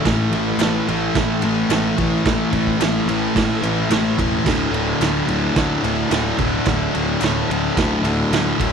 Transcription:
0.05 0.25 A1 loud
0.05 0.35 A2 medium
0.05 0.35 E3 loud
0.05 0.35 A3 loud
0.05 kick loud
0.05 snare loud
0.05 ride loud
0.30 0.51 A1 medium
0.30 ride medium
0.35 0.60 A2 medium
0.35 0.61 E3 medium
0.35 0.62 A3 loud
0.58 0.79 A1 medium
0.58 0.88 A2 loud
0.58 0.89 E3 medium
0.58 snare loud
0.58 clap loud
0.58 ride loud
0.62 0.90 A3 loud
0.88 1.08 A1 loud
0.88 1.15 A2 medium
0.88 1.15 E3 loud
0.88 1.17 A3 loud
0.88 ride medium
1.14 1.35 A2 medium
1.14 1.42 A2 loud
1.14 1.43 E3 loud
1.14 1.44 A3 loud
1.14 kick loud
1.14 snare loud
1.14 ride loud
1.42 1.63 A1 medium
1.42 1.69 A2 medium
1.42 1.69 E3 loud
1.42 1.71 A3 loud
1.42 clap medium
1.42 ride medium
1.69 1.90 A1 loud
1.69 1.96 A2 medium
1.69 1.97 E3 medium
1.69 1.99 A3 medium
1.69 snare loud
1.69 clap loud
1.69 ride loud
1.97 2.18 A1 medium
1.97 2.25 A2 medium
1.97 2.26 E3 medium
1.97 2.26 A3 loud
1.97 kick medium
1.97 ride medium
2.25 2.45 A1 loud
2.25 2.51 A2 medium
2.25 2.52 E3 loud
2.25 2.54 A3 loud
2.25 kick loud
2.25 snare loud
2.25 ride loud
2.52 2.73 A1 medium
2.52 2.79 A2 medium
2.52 2.80 E3 medium
2.52 2.82 A3 medium
2.52 kick medium
2.52 ride medium
2.67 kick medium
2.78 2.99 A1 medium
2.78 3.07 A2 medium
2.78 3.08 E3 loud
2.78 3.09 A3 loud
2.78 snare loud
2.78 clap loud
2.78 ride loud
3.06 3.27 A1 medium
3.06 3.34 A2 medium
3.06 3.35 E3 medium
3.06 3.37 A3 loud
3.06 ride medium
3.35 3.55 A2 medium
3.35 3.61 A2 loud
3.35 3.62 E3 loud
3.35 3.63 A3 loud
3.35 kick loud
3.35 snare loud
3.35 ride loud
3.62 3.82 A1 medium
3.62 3.89 A2 medium
3.62 3.90 E3 loud
3.62 3.91 A3 medium
3.62 clap medium
3.62 ride medium
3.90 4.10 A1 medium
3.90 4.17 A2 medium
3.90 4.18 E3 medium
3.90 4.20 A3 medium
3.90 snare loud
3.90 clap medium
3.90 ride loud
4.18 4.38 E1 medium
4.18 4.44 A2 medium
4.18 4.45 E3 medium
4.18 4.47 A3 medium
4.18 kick medium
4.18 ride medium
4.45 4.65 D1 loud
4.45 4.72 D2 medium
4.45 4.71 A2 medium
4.45 4.73 D3 loud
4.45 kick loud
4.45 snare loud
4.45 crash loud
4.71 4.92 D1 medium
4.71 5.01 D2 loud
4.71 5.01 A2 medium
4.71 5.02 D3 loud
4.71 ride medium
5.00 5.20 D1 medium
5.00 5.27 D2 medium
5.00 5.27 A2 medium
5.00 5.29 D3 loud
5.00 snare loud
5.00 clap medium
5.00 ride loud
5.27 5.48 D1 loud
5.27 5.53 D2 medium
5.27 5.55 A2 medium
5.27 5.55 D3 loud
5.27 ride medium
5.54 5.81 D2 loud
5.54 5.76 D2 medium
5.54 5.82 A2 loud
5.54 5.82 D3 loud
5.54 kick loud
5.54 snare loud
5.54 ride loud
5.82 6.03 D1 medium
5.82 6.08 D2 medium
5.82 6.10 A2 loud
5.82 6.11 D3 medium
5.82 clap medium
5.82 ride medium
6.10 6.31 D1 medium
6.10 6.37 D2 medium
6.10 6.37 A2 medium
6.10 6.38 D3 medium
6.10 snare loud
6.10 clap medium
6.10 ride loud
6.38 6.58 D1 medium
6.38 6.65 D2 medium
6.38 6.66 A2 medium
6.38 6.67 D3 medium
6.38 kick medium
6.38 ride medium
6.65 6.86 D1 loud
6.65 6.92 D2 medium
6.65 6.94 A2 medium
6.65 6.94 D3 loud
6.65 kick loud
6.65 snare loud
6.65 ride loud
6.94 7.15 D1 medium
6.94 7.21 D2 medium
6.94 7.21 A2 loud
6.94 7.22 D3 loud
6.94 ride medium
7.21 7.42 D1 medium
7.21 7.49 D2 medium
7.21 7.50 A2 loud
7.21 7.51 D3 loud
7.21 snare loud
7.21 clap medium
7.21 ride loud
7.49 7.69 D1 loud
7.49 7.75 D2 medium
7.49 7.76 A2 medium
7.49 7.78 D3 loud
7.49 ride medium
7.77 7.97 D2 loud
7.77 8.03 D2 loud
7.77 8.05 A2 loud
7.77 8.06 D3 loud
7.77 kick loud
7.77 snare loud
7.77 ride loud
8.02 8.22 D1 medium
8.02 8.32 D2 loud
8.02 clap medium
8.02 ride medium
8.06 8.32 A2 loud
8.06 8.33 D3 medium
8.31 8.51 D1 loud
8.31 8.58 D2 medium
8.31 8.59 A2 medium
8.31 8.60 D3 medium
8.31 snare loud
8.31 clap medium
8.31 ride loud
8.59 8.72 D1 medium
8.59 8.72 D2 medium
8.59 8.72 A2 medium
8.59 8.72 D3 medium
8.59 kick medium
8.59 ride medium

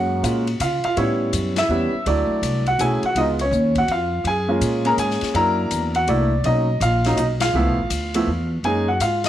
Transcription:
0.00 0.21 F#2 soft
0.00 0.23 F#2 medium
0.00 0.21 G#3 soft
0.00 0.21 A#3 soft
0.00 0.21 C#4 soft
0.00 0.58 F#4 medium
0.00 0.63 F#5 medium
0.23 0.59 A#2 medium
0.23 0.44 G#3 medium
0.23 0.45 A#3 soft
0.23 0.45 C#4 soft
0.23 0.45 F4 medium
0.23 hi-hat pedal soft
0.23 ride medium
0.47 ride soft
0.60 0.82 C#3 medium
0.60 0.84 F4 medium
0.60 0.83 F5 medium
0.60 hi-hat pedal medium
0.60 ride medium
0.84 0.98 F4 medium
0.84 0.96 F5 medium
0.84 muted upright bass stroke soft
0.84 ride soft
0.97 1.32 A2 medium
0.97 1.52 G3 medium
0.97 1.52 B3 soft
0.97 1.52 C#4 medium
0.97 1.53 E4 medium
0.97 1.31 C#5 medium
0.97 ride soft
1.33 1.68 F#2 medium
1.33 hi-hat pedal soft
1.33 ride medium
1.56 2.03 E5 medium
1.56 snare medium
1.56 ride medium
1.60 1.69 E4 medium
1.69 1.91 E2 medium
1.69 1.91 G3 medium
1.69 1.91 B3 soft
1.69 1.91 C#4 soft
1.69 1.91 E4 medium
1.93 muted upright bass stroke soft
2.06 2.28 D2 medium
2.06 2.62 F#3 medium
2.06 2.62 A3 medium
2.06 2.62 D4 soft
2.06 2.62 E4 medium
2.06 2.63 D5 medium
2.06 ride medium
2.29 muted upright bass stroke soft
2.41 2.77 C2 medium
2.41 hi-hat pedal medium
2.41 ride medium
2.66 2.80 F#4 medium
2.66 2.80 F#5 medium
2.66 ride soft
2.78 3.01 B1 medium
2.78 3.01 F#3 soft
2.78 3.01 A3 soft
2.78 3.01 C#4 soft
2.78 3.01 E4 medium
2.78 3.02 G#5 medium
2.78 hi-hat pedal medium
2.78 ride medium
2.83 3.03 G#4 medium
3.03 3.16 F#5 medium
3.03 muted upright bass stroke soft
3.03 ride soft
3.08 3.17 F#4 medium
3.15 3.50 C#2 medium
3.15 3.37 G#3 medium
3.15 3.37 B3 medium
3.15 3.18 D#4 medium
3.15 3.38 F4 medium
3.15 3.23 D#5 medium
3.15 ride medium
3.20 3.25 D#4 medium
3.39 3.74 C#5 medium
3.39 ride medium
3.43 3.75 C#4 medium
3.51 3.87 D#2 medium
3.51 hi-hat pedal soft
3.75 3.90 F#5 medium
3.75 kick medium
3.75 ride soft
3.80 3.90 F#4 medium
3.88 4.23 F2 medium
3.88 4.28 F5 medium
3.88 ride soft
3.94 4.25 F4 medium
4.24 4.60 F#2 medium
4.24 4.88 G#5 medium
4.24 ride medium
4.29 4.83 G#4 medium
4.48 4.83 G#3 medium
4.48 4.83 A#3 medium
4.48 4.83 C#4 medium
4.48 4.83 F4 medium
4.61 4.97 A#2 medium
4.61 hi-hat pedal medium
4.61 ride medium
4.85 5.32 G#3 medium
4.85 5.32 A#3 medium
4.85 5.32 C#4 medium
4.85 4.99 G#4 medium
4.85 4.94 A#4 medium
4.85 4.92 A#5 loud
4.85 ride soft
4.97 5.20 G#2 medium
4.97 5.34 G#4 medium
4.97 5.36 G#5 medium
4.97 hi-hat pedal medium
4.97 ride medium
5.10 snare soft
5.21 muted upright bass stroke soft
5.21 snare soft
5.21 ride soft
5.34 5.70 F#2 medium
5.34 5.90 F#3 soft
5.34 5.90 A#3 medium
5.34 5.90 D4 soft
5.34 5.90 E4 medium
5.34 5.91 A#5 medium
5.34 ride medium
5.38 5.93 A#4 medium
5.71 6.07 E2 medium
5.71 hi-hat pedal medium
5.71 ride medium
5.95 6.09 F#4 medium
5.95 6.07 F#5 medium
5.95 ride soft
6.07 6.43 C2 medium
6.07 6.29 A3 medium
6.07 6.30 A#3 soft
6.07 6.30 D4 soft
6.07 6.30 E4 medium
6.07 6.46 D5 medium
6.07 ride medium
6.44 6.80 B1 medium
6.44 6.66 F#3 soft
6.44 6.66 A#3 soft
6.44 6.66 C#4 soft
6.44 6.67 D#4 medium
6.44 6.83 D#5 medium
6.44 ride medium
6.80 7.16 A#1 medium
6.80 7.16 F4 medium
6.80 7.16 F5 medium
6.80 hi-hat pedal medium
6.80 ride medium
7.04 7.17 F#3 medium
7.04 7.17 A#3 medium
7.04 7.17 C#4 medium
7.04 7.17 D#4 medium
7.04 snare soft
7.04 ride soft
7.17 7.53 B1 medium
7.17 7.24 D#4 medium
7.17 7.22 D#5 medium
7.17 hi-hat pedal soft
7.17 ride medium
7.40 8.48 F4 medium
7.40 8.47 F5 medium
7.40 snare medium
7.40 ride medium
7.53 7.66 C#2 medium
7.53 7.76 F3 medium
7.53 7.76 A3 medium
7.53 7.76 B3 medium
7.53 7.76 E4 medium
7.66 7.78 B1 medium
7.78 7.89 A1 medium
7.90 8.26 D2 medium
7.90 hi-hat pedal medium
7.90 ride medium
8.14 8.26 F3 medium
8.14 8.26 A3 medium
8.14 8.27 B3 medium
8.14 8.27 E4 medium
8.14 ride medium
8.27 8.63 E2 medium
8.63 8.99 F#2 medium
8.63 8.86 G#3 medium
8.63 8.86 A#3 soft
8.63 8.86 C#4 soft
8.63 8.86 D#4 medium
8.63 8.87 G#4 medium
8.63 8.89 G#5 medium
8.63 ride soft
8.88 9.01 F#4 medium
8.88 9.01 F#5 medium
9.00 9.29 G#2 medium
9.00 9.25 F5 medium
9.00 hi-hat pedal medium
9.00 ride medium
9.04 9.24 F4 medium
9.24 9.29 D#5 loud
9.24 snare medium
9.24 ride medium

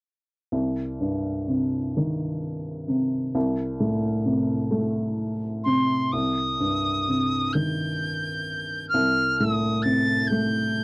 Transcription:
0.52 3.31 C2 soft
1.01 2.86 G2 soft
1.48 2.87 C3 soft
1.97 3.31 D#3 soft
2.88 3.33 C3 soft
3.35 6.09 C2 soft
3.80 5.61 A2 soft
4.25 5.64 C3 soft
4.71 6.09 A3 soft
5.64 6.12 C3 soft
5.64 6.14 C6 medium
6.12 8.91 C2 soft
6.12 7.54 D#6 medium
6.60 8.44 G2 soft
7.08 8.90 C3 soft
7.53 8.90 D#3 soft
7.53 8.88 G6 medium
8.89 9.38 F6 medium
8.94 10.84 C2 soft
9.37 10.84 A2 soft
9.37 9.84 D#6 medium
9.82 10.84 C3 soft
9.82 10.29 A6 medium
10.27 10.84 A3 soft
10.27 10.84 G6 medium

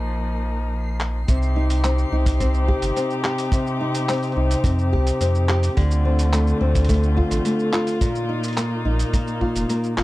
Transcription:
0.00 1.25 A#1 medium
0.00 1.26 F3 medium
0.00 1.26 A#3 medium
0.00 1.26 D#4 medium
0.00 1.29 C7 medium
1.00 clap medium
1.28 2.05 C2 loud
1.28 3.51 C3 medium
1.28 5.73 C3 medium
1.28 5.73 C4 medium
1.28 5.73 D#4 medium
1.28 5.73 G4 medium
1.28 kick loud
1.28 open hi-hat soft
1.28 shaker medium
1.42 shaker soft
1.56 2.11 D#4 medium
1.70 open hi-hat medium
1.70 shaker medium
1.84 2.40 C4 medium
1.84 clap medium
1.84 open hi-hat soft
1.84 shaker soft
1.98 shaker soft
2.12 2.75 C2 loud
2.12 3.79 D#4 medium
2.26 kick loud
2.26 open hi-hat medium
2.26 shaker medium
2.40 2.96 C4 medium
2.40 kick loud
2.40 open hi-hat soft
2.40 shaker soft
2.54 shaker soft
2.68 3.23 G4 medium
2.68 kick medium
2.82 2.92 G1 loud
2.82 open hi-hat medium
2.82 shaker medium
2.96 4.08 C4 medium
2.96 open hi-hat soft
2.96 shaker medium
3.10 shaker soft
3.24 4.91 G4 medium
3.24 clap medium
3.38 open hi-hat medium
3.38 shaker medium
3.52 5.76 C3 medium
3.52 kick loud
3.52 open hi-hat soft
3.52 shaker medium
3.67 shaker soft
3.81 4.35 D#4 medium
3.95 open hi-hat medium
3.95 shaker medium
4.09 4.64 C4 medium
4.09 clap medium
4.09 open hi-hat soft
4.09 shaker medium
4.13 open hi-hat soft
4.18 open hi-hat soft
4.23 open hi-hat soft
4.23 shaker soft
4.27 open hi-hat soft
4.32 open hi-hat soft
4.37 4.55 C2 loud
4.37 5.82 D#4 medium
4.51 open hi-hat medium
4.51 shaker medium
4.64 4.95 F2 medium
4.64 5.20 C4 medium
4.64 kick loud
4.64 open hi-hat soft
4.64 shaker medium
4.79 shaker soft
4.93 5.12 C2 medium
4.93 5.48 G4 medium
4.93 kick medium
5.07 open hi-hat medium
5.07 shaker medium
5.21 5.69 F2 loud
5.21 6.05 C4 medium
5.21 open hi-hat soft
5.21 shaker medium
5.35 shaker soft
5.49 5.83 G4 medium
5.49 clap medium
5.63 open hi-hat medium
5.63 shaker medium
5.77 6.54 D2 loud
5.77 8.01 D3 medium
5.77 7.99 D3 medium
5.77 7.99 A3 medium
5.77 7.99 C4 medium
5.77 10.04 F4 medium
5.77 kick loud
5.77 open hi-hat soft
5.91 shaker medium
6.05 6.60 C4 medium
6.19 open hi-hat medium
6.19 shaker medium
6.33 6.88 A3 medium
6.33 clap medium
6.33 open hi-hat soft
6.33 shaker medium
6.47 shaker soft
6.61 7.24 D2 loud
6.61 8.07 C4 medium
6.75 kick loud
6.75 open hi-hat medium
6.75 shaker medium
6.85 open hi-hat soft
6.89 7.44 A3 medium
6.89 kick loud
6.89 open hi-hat soft
6.89 shaker medium
6.94 open hi-hat soft
7.03 shaker soft
7.17 7.73 F4 medium
7.17 kick medium
7.31 7.40 A1 loud
7.31 open hi-hat medium
7.31 shaker medium
7.45 8.07 A3 medium
7.45 open hi-hat soft
7.45 shaker medium
7.59 shaker soft
7.73 8.32 F4 medium
7.73 clap medium
7.87 open hi-hat medium
7.87 shaker medium
8.01 10.04 A#2 medium
8.01 10.04 A#3 medium
8.01 10.04 D#4 medium
8.01 kick loud
8.01 open hi-hat soft
8.01 shaker medium
8.15 shaker soft
8.29 8.85 D#4 medium
8.43 open hi-hat soft
8.43 shaker medium
8.48 open hi-hat soft
8.53 open hi-hat soft
8.57 9.12 A#3 medium
8.57 clap medium
8.57 open hi-hat soft
8.57 shaker medium
8.85 9.04 A#1 loud
8.85 10.04 D#4 medium
8.99 open hi-hat soft
8.99 shaker medium
9.13 9.68 A#3 medium
9.13 kick loud
9.13 open hi-hat soft
9.13 shaker medium
9.27 shaker soft
9.41 9.96 F4 medium
9.41 kick medium
9.56 9.65 F1 medium
9.56 open hi-hat soft
9.56 shaker medium
9.69 10.04 A#3 medium
9.69 open hi-hat soft
9.69 shaker medium
9.84 shaker soft
9.97 10.04 F1 medium
9.97 10.04 F4 medium
9.97 clap medium

